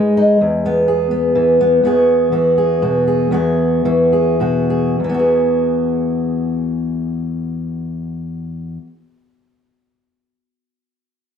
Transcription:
Already playing: G#2 G#3 D#4 B4
0.17 D#4
0.41 E2
0.66 B3
0.88 G#4
1.11 B3
1.35 E3
1.61 B3
1.84 E2 B3 F#4 G#4
2.32 E3 F#4
2.58 G#4
2.82 B2 F#4
3.08 G#4
3.31 E2 B3 F#4 G#4
3.85 E3 F#4
4.13 G#4
4.40 B2 F#4
4.70 G#4
5.00 E2
5.04 E3
5.09 B3
5.14 F#4
5.19 G#4

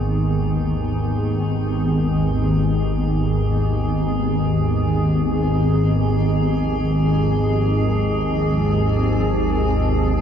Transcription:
Already playing: G#1 D#2 D#3 B3 G#4
4.87 F3 G#4
5.75 C4

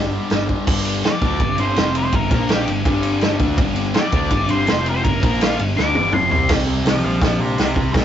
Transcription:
Already playing: G1 G2 D3 G3
0.12 D3 G3
0.29 G1 G2 D3 G3, snare, open hi-hat
0.48 D3 G3, kick
0.65 G1 G2 D3 G3, kick, crash
0.85 ride
1.04 D5, muted distorted electric guitar stroke, snare, ride
1.22 D2 D3 A3 D4, kick, ride
1.40 G1 G2 D3, kick, ride
1.58 G1 G2 D3 G3 C5, ride
1.75 F1 F2 C3 F3, snare, ride
1.95 C5, ride
2.12 G1 G2 D3 A#4, kick, ride
2.31 A#1 A#2 F3 A#3 A#4, kick, ride
2.49 snare, ride
2.53 G4
2.68 G1 G2 D3, ride
2.85 G1 G2 D3 G3, kick, ride
3.03 ride
3.21 snare, ride
3.39 D2 D3 A3 D4, kick, ride
3.58 G1 G2 D3 G3, kick, ride
3.76 ride
3.94 D5, muted distorted electric guitar stroke, snare, ride
4.12 D2 D3 A3 D4, kick, ride
4.31 G1 G2 D3, kick, ride
4.48 G1 G2 D3 G3 C5, ride
4.67 F1 F2 C3 F3, snare, ride
4.86 C5, ride
5.04 G1 G2 D3 A#4, kick, ride
5.22 A#1 A#2 F3 A#3 A#4, kick, ride
5.41 F4, snare, ride
5.59 G1 G2 D3, ride
5.77 D2 D3 A3 D4 D6, snare
5.95 G1 G2 D3 G3, high tom
6.12 F1 F2 C3 F3 C6, mid tom
6.31 C2 C3 G3 C4 C6, floor tom
6.49 C2 C3 G3, kick, snare, crash
6.53 C4
6.67 C2
6.84 C2 C5, snare, open hi-hat
6.89 F5
7.04 A#1 C5 F5
7.22 A#1 C3 G3 C4 C5 F5, kick, snare, open hi-hat
7.40 G4 C5
7.58 C2 G4 C5, snare, open hi-hat
7.75 C2 G4 C5, kick
7.93 C2 C3 G3 F4 A#4, kick, snare, open hi-hat
7.97 C4

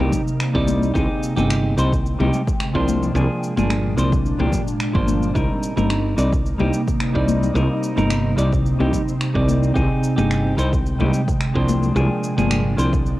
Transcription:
Already playing: C3 A#3 D#4
0.00 G3 C4 D#4 G4
0.12 kick, low conga, cabasa
0.28 cabasa
0.40 finger snap, cabasa
0.54 C2 G3 C4 D#4 D5, kick
0.67 high conga, cabasa
0.83 cabasa
0.94 C2 C3 G#3 C4 D#4 G4 G#4 G5, kick, cabasa
1.23 cabasa
1.36 G1 C4 D#4 G4 G#4, high conga, cabasa
1.50 finger snap, cabasa
1.77 C2 G3 C4 D#4 C5, cabasa
1.92 kick, cabasa
2.06 cabasa
2.19 C2 G3 C4 D#4 G4, high conga, low conga
2.33 cabasa
2.47 kick, cabasa
2.60 finger snap, cabasa
2.74 C2 F3 A#3 D4 C5, kick
2.88 A#2 D4, high conga, cabasa
3.03 low conga, cabasa
3.14 C2 F3 A#3 D4 G#4, cabasa
3.43 cabasa
3.56 G1 F3 A#3 D4 G#4, high conga, cabasa
3.70 finger snap, cabasa
3.97 C2 F3 A#3 D4 C5, cabasa
4.12 kick, low conga, cabasa
4.26 cabasa
4.39 C2 F3 A#3 D4 G4, high conga
4.52 kick, low conga, cabasa
4.68 cabasa
4.80 finger snap, cabasa
4.93 G1 F3 A#3 D4 C5, kick
5.08 high conga, cabasa
5.23 cabasa
5.34 C2 C3 G3 A#3 C4 D#4 A#4, kick, cabasa
5.63 cabasa
5.76 G1 G3 C4 D#4 A#4, high conga, cabasa
5.90 finger snap, cabasa
6.16 C2 G3 C4 D#4 D5, cabasa
6.33 kick, cabasa
6.46 cabasa
6.58 C2 G3 C4 D#4 G4, high conga, low conga
6.73 cabasa
6.88 kick, cabasa
7.00 finger snap, cabasa
7.13 C2 G3 C4 D#4 D5, kick
7.28 high conga, cabasa
7.43 low conga, cabasa
7.54 C2 G3 C4 D#4 A#4, cabasa
7.83 cabasa
7.96 G1 G3 C4 D#4 A#4, high conga, cabasa
8.11 finger snap, cabasa
8.36 C2 G3 C4 D#4 D5, cabasa
8.52 kick, low conga, cabasa
8.66 cabasa
8.79 C2 G3 C4 D#4 G4, high conga
8.93 kick, low conga, cabasa
9.08 cabasa
9.21 finger snap, cabasa
9.34 C2 G3 C4 D#4 D5, kick
9.49 high conga, cabasa
9.63 cabasa
9.74 C2 G#3 C4 D#4 G4 G#4 G5, kick, cabasa
10.04 cabasa
10.16 G1 C4 D#4 G4 G#4, high conga, cabasa
10.31 finger snap, cabasa
10.57 C2 G3 C4 D#4 C5, cabasa
10.73 kick, cabasa
10.86 cabasa
10.99 C2 G3 C4 D#4 G4, high conga, low conga
11.14 cabasa
11.28 kick, cabasa
11.41 finger snap, cabasa
11.54 C2 F3 A#3 D4 C5, kick
11.68 A#2 D4, high conga, cabasa
11.83 low conga, cabasa
11.94 C2 F3 A#3 D4 G#4, cabasa
12.24 cabasa
12.37 G1 F3 A#3 D4 G#4, high conga, cabasa
12.51 finger snap, cabasa
12.77 C2 F3 A#3 D4 C5, cabasa
12.93 kick, low conga, cabasa
13.06 cabasa

